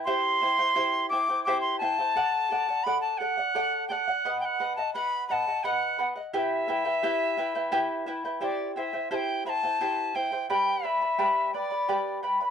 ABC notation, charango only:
X:1
M:3/4
L:1/16
Q:1/4=86
K:Clyd
V:1 name="Charango"
[EGceg]2 [Eceg] [Ecg] [EGceg]2 [Eceg] [Ecg] [EGceg]2 [Eceg] [Ecg] | [Adf]2 [Adf] [df] [Adf]2 [Adf] [df] [Adf]2 [Adf] [df] | [B^df]2 [Bdf] [df] [Bdf]2 [Bdf] [df] [Bdf]2 [Bdf] [df] | [EGBeg]2 [EBeg] [EBg] [EGBeg]2 [EBeg] [EBg] [EGBeg]2 [EBeg] [EBg] |
[EGceg]2 [Eceg] [Ecg] [EGceg]2 [Eceg] [Ecg] [EGceg]2 [Eceg] [Ecg] | [GBdgb]2 [Bdgb] [Bdb] [GBdgb]2 [Bdgb] [Bdb] [GBdgb]2 [Bdgb] [Bdb] |]